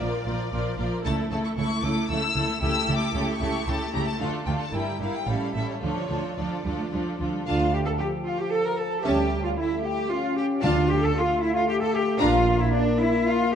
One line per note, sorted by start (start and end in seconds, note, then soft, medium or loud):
0.00 0.08 A#1 medium
0.00 0.08 A#2 medium
0.00 0.24 F3 soft
0.00 0.24 F4 soft
0.00 0.25 A#4 soft
0.00 0.25 D5 soft
0.00 0.79 D5 medium
0.25 0.35 A#1 medium
0.25 0.35 A#2 medium
0.25 0.51 F3 soft
0.25 0.51 F4 soft
0.25 0.52 A#4 soft
0.25 0.52 D5 soft
0.52 0.61 A#1 soft
0.52 0.61 A#2 medium
0.52 0.77 F3 soft
0.52 0.76 F4 medium
0.52 0.77 A#4 soft
0.52 0.77 D5 soft
0.78 0.86 A#1 medium
0.78 0.87 A#2 soft
0.78 1.04 F3 soft
0.78 1.04 F4 soft
0.78 1.04 A#4 soft
0.78 1.04 D5 soft
1.04 1.13 C#2 medium
1.04 1.13 C#3 medium
1.04 1.30 A3 medium
1.04 1.30 E4 medium
1.04 1.29 A4 medium
1.04 1.13 A5 medium
1.30 1.38 C#2 soft
1.30 1.39 C#3 medium
1.30 1.56 A3 soft
1.30 1.56 E4 soft
1.30 1.56 A4 soft
1.30 1.37 A5 medium
1.44 1.49 C#6 medium
1.57 1.65 C#2 medium
1.57 1.65 C#3 medium
1.57 1.83 A3 soft
1.57 1.83 E4 soft
1.57 1.82 A4 medium
1.57 1.83 C#6 medium
1.83 1.91 C#2 medium
1.83 1.92 C#3 medium
1.83 2.08 A3 medium
1.83 2.08 E4 medium
1.83 2.08 A4 medium
1.83 2.09 D6 medium
2.09 2.17 C#2 soft
2.09 2.18 C#3 medium
2.09 2.34 A3 medium
2.09 2.34 E4 medium
2.09 2.35 A4 soft
2.09 2.60 E6 medium
2.35 2.43 C#2 medium
2.35 2.44 C#3 medium
2.35 2.60 A3 soft
2.35 2.60 E4 medium
2.35 2.61 A4 soft
2.61 2.70 C#2 medium
2.61 2.70 C#3 medium
2.61 2.87 A3 medium
2.61 2.87 E4 medium
2.61 2.86 G4 medium
2.61 2.86 A4 soft
2.61 2.96 E6 medium
2.87 2.96 C#2 medium
2.87 2.96 C#3 medium
2.87 3.13 A3 soft
2.87 3.13 E4 soft
2.87 3.13 G4 soft
2.87 3.13 A4 medium
2.97 3.31 D6 medium
3.14 3.23 C#2 medium
3.14 3.23 C#3 medium
3.14 3.39 A3 medium
3.14 3.39 E4 medium
3.14 3.40 G4 soft
3.14 3.40 A4 medium
3.32 3.67 C#6 medium
3.40 3.49 C#2 medium
3.40 3.49 C#3 medium
3.40 3.65 A3 soft
3.40 3.65 E4 soft
3.40 3.67 G4 soft
3.40 3.66 A4 soft
3.66 3.75 C#2 medium
3.66 3.76 C#3 medium
3.66 3.92 A3 medium
3.66 3.92 E4 medium
3.66 3.93 G4 soft
3.66 3.93 A4 soft
3.66 3.94 A5 medium
3.93 4.02 C#2 medium
3.93 4.02 C#3 medium
3.93 4.19 A3 soft
3.93 4.19 E4 soft
3.93 4.20 G4 soft
3.93 4.18 A4 soft
3.93 4.07 A#5 medium
4.07 4.20 A5 medium
4.19 4.30 D2 medium
4.19 4.28 D3 medium
4.19 4.45 A3 medium
4.19 4.45 D4 medium
4.19 4.45 F4 medium
4.19 4.46 A4 medium
4.19 4.28 F5 medium
4.46 4.55 D2 medium
4.46 4.55 D3 medium
4.46 4.73 A3 soft
4.46 4.73 D4 soft
4.46 4.73 F4 soft
4.46 4.73 A4 soft
4.46 4.51 G5 medium
4.60 4.73 A5 medium
4.73 4.81 G1 medium
4.73 4.82 G2 medium
4.73 4.98 G3 soft
4.73 4.98 E4 soft
4.73 5.00 E4 soft
4.73 4.99 A#4 soft
4.73 5.01 G5 medium
4.99 5.09 G1 soft
4.99 5.08 G2 soft
4.99 5.26 G3 soft
4.99 5.27 E4 soft
4.99 5.27 A#4 soft
4.99 5.14 F5 medium
5.15 5.28 G5 medium
5.27 5.35 A1 soft
5.27 5.35 A2 soft
5.27 5.54 G3 soft
5.27 5.54 C#4 soft
5.27 5.54 E4 soft
5.27 5.54 A4 soft
5.27 5.55 F5 medium
5.54 5.63 A1 soft
5.54 5.62 A2 soft
5.54 5.82 G3 soft
5.54 5.82 C#4 soft
5.54 5.82 E4 soft
5.54 5.81 A4 soft
5.54 5.68 E5 medium
5.69 5.75 C#5 medium
5.81 5.89 D2 soft
5.81 5.90 D3 soft
5.81 6.09 F3 soft
5.81 6.09 D4 soft
5.81 6.08 F4 soft
5.81 6.08 A4 soft
5.81 6.37 C#5 medium
6.09 6.18 D2 soft
6.09 6.18 D3 soft
6.09 6.36 F3 soft
6.09 6.37 D4 soft
6.09 6.36 F4 soft
6.09 6.36 A4 soft
6.37 6.46 D2 soft
6.37 6.45 F3 soft
6.37 6.64 F3 soft
6.37 6.64 D4 soft
6.37 6.64 F4 soft
6.37 6.64 A4 soft
6.37 7.20 D5 medium
6.64 6.74 D2 soft
6.64 6.91 F3 soft
6.64 6.70 G3 soft
6.64 6.91 D4 soft
6.64 6.91 F4 soft
6.64 6.91 A4 soft
6.78 6.84 A3 soft
6.92 7.01 D2 soft
6.92 7.18 F3 soft
6.92 7.00 G3 soft
6.92 7.18 D4 soft
6.92 7.19 F4 soft
6.92 7.19 A4 soft
7.19 7.28 D2 soft
7.19 7.25 F3 soft
7.19 7.46 F3 soft
7.19 7.46 D4 soft
7.19 7.46 F4 soft
7.19 7.46 A4 soft
7.34 7.39 G3 soft
7.46 7.92 D2 medium
7.46 7.96 A3 medium
7.46 7.72 D4 medium
7.46 7.71 F4 medium
7.46 7.76 F4 medium
7.46 7.71 F5 soft
7.46 7.72 F5 medium
7.46 7.71 A5 medium
7.73 7.79 G4 medium
7.73 7.85 G4 medium
7.73 7.87 G5 medium
7.86 7.92 A4 medium
7.86 8.00 A5 medium
7.98 9.02 F3 medium
7.98 8.07 G4 medium
7.98 8.12 G4 medium
7.98 8.27 G5 medium
8.25 8.39 F4 medium
8.25 8.40 F5 medium
8.39 8.45 G4 medium
8.39 8.53 G4 medium
8.39 8.46 G5 medium
8.51 8.64 A4 medium
8.51 8.66 A4 medium
8.51 8.60 A5 medium
8.65 8.71 A#4 medium
8.65 8.79 A#4 medium
8.65 8.79 A#5 medium
8.77 9.06 A4 medium
8.77 9.05 A4 medium
8.77 9.06 A5 medium
9.04 9.49 D2 medium
9.04 9.57 G3 medium
9.04 9.29 C#4 medium
9.04 9.43 G4 medium
9.04 9.44 G4 medium
9.04 9.29 E5 medium
9.04 9.44 G5 medium
9.04 9.30 A5 medium
9.44 9.50 F4 medium
9.44 9.52 F5 medium
9.57 10.10 A3 medium
9.57 9.69 E4 medium
9.57 9.84 E4 medium
9.57 9.84 E5 medium
9.84 10.11 G4 medium
9.84 10.10 G4 medium
9.84 10.11 G5 medium
10.09 10.63 C#4 medium
10.09 10.36 F4 medium
10.09 10.37 F4 medium
10.09 10.37 F5 medium
10.37 10.63 G4 medium
10.37 10.45 G4 medium
10.37 10.63 G5 medium
10.61 11.07 D2 medium
10.61 11.38 D3 medium
10.61 11.15 D4 medium
10.61 10.87 D4 medium
10.61 10.90 F4 medium
10.61 10.89 F4 medium
10.61 10.88 F5 medium
10.61 10.90 F5 medium
10.61 10.87 A5 medium
10.88 11.03 G4 medium
10.88 11.02 G4 medium
10.88 10.96 G5 medium
11.02 11.17 A4 medium
11.02 11.16 A4 medium
11.02 11.09 A5 medium
11.15 12.18 A3 medium
11.15 11.44 F4 medium
11.15 11.42 F4 medium
11.15 11.42 F5 medium
11.42 11.55 E4 medium
11.42 11.54 E4 medium
11.42 11.55 E5 medium
11.54 11.61 F4 medium
11.54 11.68 F4 medium
11.54 11.68 F5 medium
11.68 11.82 G4 medium
11.68 11.74 G4 medium
11.68 11.81 G5 medium
11.81 11.95 A4 medium
11.81 11.94 A4 medium
11.81 11.87 A5 medium
11.94 12.23 G4 medium
11.94 12.21 G4 medium
11.94 12.01 G5 medium
12.19 12.64 A#1 medium
12.19 13.55 A#3 medium
12.19 12.44 D4 medium
12.19 12.59 F4 medium
12.19 12.62 F4 medium
12.19 12.44 F5 medium
12.19 12.59 F5 medium
12.19 12.44 A#5 medium
12.60 12.73 E4 medium
12.60 12.73 E5 medium
12.73 12.99 D4 medium
12.73 12.85 D4 medium
12.73 12.79 D5 medium
12.99 13.25 E4 medium
12.99 13.11 E4 medium
12.99 13.25 E5 medium
13.25 13.51 F4 medium
13.25 13.50 F5 medium
13.51 13.55 G4 medium
13.51 13.55 G5 medium